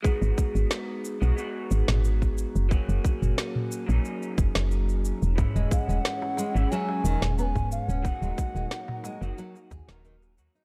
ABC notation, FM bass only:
X:1
M:4/4
L:1/16
Q:1/4=90
K:G#m
V:1 name="FM bass" clef=bass
z G,,, z G,,, z3 B,,, z2 G,,, G,,,3 z F,,, | z F,,, z F,,, z3 A,,, z2 F,,, F,,,3 z E,,, | z E,,, z E,,, z3 G,,, z2 E,,, E,,,3 z D,,, | z D,,, z D,,, z3 F,,, z2 D,, D,,,3 D,, z |]